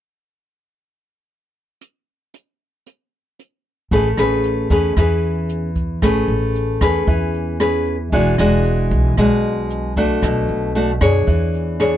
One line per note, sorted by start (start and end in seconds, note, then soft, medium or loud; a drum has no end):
1.81 closed hi-hat soft
2.34 closed hi-hat soft
2.86 closed hi-hat soft
3.39 closed hi-hat soft
3.91 4.16 A1 medium
3.91 4.94 A3 medium
3.91 4.07 C#4 medium
3.91 4.08 G#4 medium
3.91 4.08 B4 medium
3.91 kick medium
3.91 closed hi-hat soft
4.17 4.67 A1 medium
4.17 4.67 C#4 medium
4.17 4.67 G#4 medium
4.17 4.67 B4 medium
4.17 cross-stick medium
4.17 closed hi-hat soft
4.44 closed hi-hat soft
4.70 4.95 E2 medium
4.70 4.93 C#4 medium
4.70 4.93 G#4 medium
4.70 4.93 B4 medium
4.70 kick medium
4.70 closed hi-hat soft
4.97 5.98 E2 medium
4.97 6.00 E3 soft
4.97 5.68 C#4 medium
4.97 5.68 G#4 soft
4.97 5.68 B4 medium
4.97 kick soft
4.97 cross-stick medium
4.97 closed hi-hat soft
5.23 closed hi-hat soft
5.49 closed hi-hat soft
5.76 kick medium
5.76 closed hi-hat soft
6.02 6.27 A1 medium
6.02 7.05 A3 soft
6.02 6.77 C#4 medium
6.02 6.77 G#4 medium
6.02 6.77 B4 medium
6.02 kick medium
6.02 cross-stick medium
6.02 closed hi-hat soft
6.28 6.77 A1 medium
6.28 closed hi-hat soft
6.55 closed hi-hat soft
6.81 7.06 E2 medium
6.81 7.56 C#4 medium
6.81 7.56 G#4 medium
6.81 7.56 B4 medium
6.81 kick medium
6.81 cross-stick medium
6.81 closed hi-hat soft
7.07 8.08 E2 medium
7.07 8.10 E3 medium
7.07 kick medium
7.07 closed hi-hat soft
7.34 closed hi-hat soft
7.60 7.95 C#4 soft
7.60 7.95 G#4 medium
7.60 7.96 B4 medium
7.60 cross-stick medium
7.60 closed hi-hat soft
7.86 closed hi-hat soft
8.12 8.37 E1 medium
8.12 9.15 E3 medium
8.12 8.34 G#3 medium
8.12 8.35 D4 medium
8.12 8.35 F#4 medium
8.12 kick soft
8.12 closed hi-hat soft
8.38 8.88 E1 medium
8.38 9.14 G#3 medium
8.38 9.14 D4 medium
8.38 9.14 F#4 medium
8.38 cross-stick medium
8.38 closed hi-hat soft
8.65 closed hi-hat soft
8.91 9.16 B1 medium
8.91 kick medium
8.91 closed hi-hat soft
9.17 10.18 B1 medium
9.17 10.20 B2 medium
9.17 9.92 G#3 medium
9.17 9.92 D4 soft
9.17 9.93 F#4 medium
9.17 kick soft
9.17 cross-stick soft
9.17 closed hi-hat soft
9.44 closed hi-hat soft
9.70 closed hi-hat soft
9.96 10.71 A3 medium
9.96 10.71 D4 medium
9.96 10.71 F#4 medium
9.96 kick medium
9.96 closed hi-hat soft
10.23 10.47 B1 medium
10.23 11.25 B2 medium
10.23 kick medium
10.23 cross-stick medium
10.23 closed hi-hat soft
10.49 10.98 B1 medium
10.49 closed hi-hat soft
10.75 10.90 A3 medium
10.75 10.91 D4 soft
10.75 10.91 F#4 medium
10.75 closed hi-hat soft
11.01 11.25 F#2 medium
11.01 11.75 D4 medium
11.01 11.76 G#4 medium
11.01 11.76 C#5 medium
11.01 kick medium
11.01 cross-stick medium
11.01 closed hi-hat soft
11.27 11.97 E2 medium
11.27 11.97 E3 medium
11.27 kick soft
11.27 closed hi-hat soft
11.54 closed hi-hat soft
11.80 11.97 D4 medium
11.80 11.97 G#4 medium
11.80 11.97 C#5 medium
11.80 cross-stick medium
11.80 closed hi-hat soft